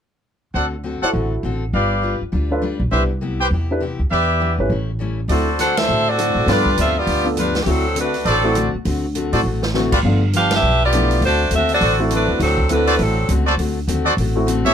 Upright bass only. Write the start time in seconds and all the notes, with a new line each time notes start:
0.54 D2
1.02 muted upright bass stroke
1.13 A1
1.43 A1
1.73 G1
2.21 muted upright bass stroke
2.33 D2
2.80 B1
2.91 C2
3.51 E2
3.99 D2
4.11 E2
4.58 G#1
4.70 A1
5.28 D2
5.89 A2
6.35 A2
6.46 G2
6.77 D2
7.07 D2
7.66 D2
8.25 A1
8.74 muted upright bass stroke
8.85 D2
9.33 A2
9.43 A1
9.92 G#1
10.03 G1
10.63 B1
11.21 D2
11.51 D#2
11.81 A1
12.28 D#2
12.40 D2
12.99 A1
13.29 C#2
13.57 D2
13.88 D#2
14.17 A1
14.65 G#1